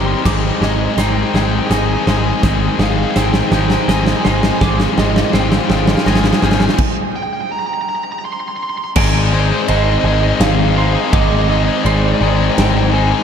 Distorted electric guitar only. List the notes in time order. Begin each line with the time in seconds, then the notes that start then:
Already playing: G3 C4 D#4 G4
0.25 G#3 C4 D#4 G#4
0.62 G#3 C4 D#4 G#4
0.98 G#3 C4 D#4 G#4
1.34 G#3 C4 D#4 G#4
1.70 G#3 C4 D#4 G#4
2.07 G#3 C4 D#4 G#4
2.42 G#3 C4 D#4 G#4
2.79 G#3 C4 D#4 G#4
3.16 G#3 C4 D#4 G#4
3.53 G#3 C4 D#4 G#4
3.89 G#3 C4 D#4 G#4
4.25 G#3 C4 D#4 G#4
4.61 G#3 C4 F4 G#4
4.98 G#3 C4 F4 G#4
5.34 G#3 C4 F4 G#4
5.69 G#3 C4 F4 G#4
6.07 G#3 C4 F4 G#4
6.42 G#3 C4 F4 G#4
8.96 G#3 C4 D#4 G#4
9.14 C4 D#4 G#4
9.32 G#3 C4 D#4 G#4
9.51 C4 D#4 G#4
9.69 G#3 C4 D#4 G#4
10.04 G#3 C4 D#4 G#4
10.22 C4 D#4 G#4
10.76 G#3 C4 D#4 G#4
10.94 C4 D#4 G#4
11.12 G#3 C4 D#4 G#4
11.30 C4 D#4 G#4
11.49 G#3 C4 D#4 G#4
11.66 C4 D#4 G#4
11.85 G#3 C4 D#4 G#4
12.21 G#3 C4 D#4 G#4
12.38 C4 D#4 G#4
12.93 G#3 C4 D#4 G#4
13.11 C4 D#4 G#4